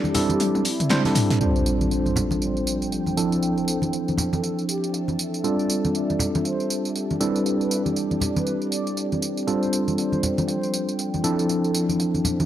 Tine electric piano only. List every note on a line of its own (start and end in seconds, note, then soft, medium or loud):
0.00 0.12 G3 medium
0.00 0.12 C4 medium
0.00 0.12 D4 medium
0.00 0.12 E4 medium
0.00 0.12 A4 medium
0.15 0.63 G3 medium
0.15 0.63 C4 medium
0.15 0.63 D4 medium
0.15 0.63 E4 medium
0.15 0.63 A4 medium
0.90 1.02 G3 medium
0.90 1.02 C4 medium
0.90 1.02 D4 medium
0.90 1.02 E4 medium
0.90 1.02 C5 loud
1.05 1.38 G3 medium
1.05 1.38 C4 medium
1.05 1.38 D4 medium
1.05 1.38 E4 medium
1.05 1.38 A4 medium
1.41 3.15 G3 medium
1.41 3.15 C4 medium
1.41 3.15 D4 medium
1.41 3.15 F4 medium
1.41 3.15 A4 medium
3.17 5.42 F3 medium
3.17 5.42 C4 medium
3.17 5.42 D4 medium
3.17 5.42 E4 medium
3.17 5.42 A4 medium
5.44 7.18 G3 medium
5.44 7.18 C4 medium
5.44 7.18 D4 medium
5.44 7.18 F4 medium
5.44 7.18 A4 medium
7.20 9.45 G3 medium
7.20 9.45 C4 medium
7.20 9.45 D4 medium
7.20 9.45 E4 medium
7.20 9.45 A4 medium
9.47 11.21 G3 medium
9.47 11.21 C4 medium
9.47 11.21 D4 medium
9.47 11.21 F4 medium
9.47 11.21 A4 medium
11.24 12.46 F3 medium
11.24 12.46 C4 medium
11.24 12.46 D4 medium
11.24 12.46 E4 medium
11.24 12.46 A4 medium